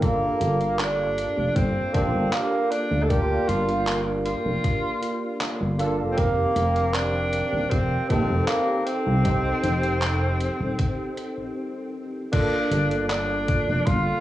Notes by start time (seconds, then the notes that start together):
Already playing: G1 G4 F5
0.00 A#3 D4 F4 A4 D5, kick, closed hi-hat
0.41 G1, closed hi-hat
0.61 closed hi-hat
0.79 D4, clap, closed hi-hat
1.18 closed hi-hat
1.37 F1
1.56 G1 C4, kick, closed hi-hat
1.93 A#1 A#3 C4 D4 F4 G4, kick, closed hi-hat
2.14 G1
2.33 A#3, clap, closed hi-hat
2.71 D4, closed hi-hat
2.91 D2
3.03 A4
3.08 A#3 D4 F4 G4 A#4, kick, closed hi-hat
3.48 G1 F4, closed hi-hat
3.68 closed hi-hat
3.87 clap, closed hi-hat
4.25 F4, closed hi-hat
4.45 F1
4.64 kick, closed hi-hat
5.03 closed hi-hat
5.41 clap, closed hi-hat
5.61 G1
5.78 A#3 D4 F4 A4, closed hi-hat
5.99 F1
6.11 C4
6.16 D#3 A#3 C4 G4 A#4 C5 F5 G5, kick, closed hi-hat
6.56 F1, closed hi-hat
6.76 closed hi-hat
6.94 D4, clap, closed hi-hat
7.33 closed hi-hat
7.53 D#1
7.70 F1 C4, kick, closed hi-hat
8.09 A#1 C4 D#4 G4 A4, kick, closed hi-hat
8.30 F1
8.47 A#3, clap, closed hi-hat
8.86 C4, closed hi-hat
9.07 C2
9.24 C4 D#4 G4 C5, kick, closed hi-hat
9.64 F1, closed hi-hat
9.83 closed hi-hat
10.02 clap, closed hi-hat
10.40 closed hi-hat
10.60 D#1
10.79 kick, closed hi-hat
11.17 closed hi-hat
11.37 A#1
12.32 A#3 D4 F4 G4 A4 D5 F5, kick, closed hi-hat, crash
12.71 G1, closed hi-hat
12.91 closed hi-hat
13.09 D4, clap, closed hi-hat
13.48 kick, closed hi-hat
13.68 F1
13.85 G1 F4, kick, closed hi-hat